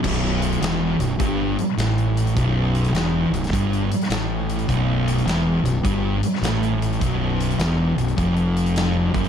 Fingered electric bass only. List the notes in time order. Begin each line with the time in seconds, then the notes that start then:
0.04 B0
0.61 E1
0.99 B0
1.20 G1
1.77 A1
2.37 B0
2.92 E1
3.30 B0
3.53 G1
4.09 A1
4.69 B0
5.25 E1
5.64 B0
5.84 G1
6.41 A1
7.02 B0
7.58 E1
7.97 B0
8.18 F1
9.14 F#1